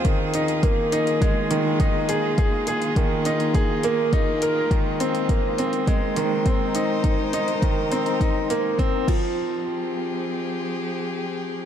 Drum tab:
CC |----------------|----------------|----------------|--------------x-|
HH |x-xxx-xxx-x-x-x-|x-xxx-xxx-x-x-x-|x-xxx-xxx-x-x-x-|x-xxx-xxx-x-x---|
BD |o---o---o---o---|o---o---o---o---|o---o---o---o---|o---o---o---o-o-|

CC |----------------|
HH |----------------|
BD |----------------|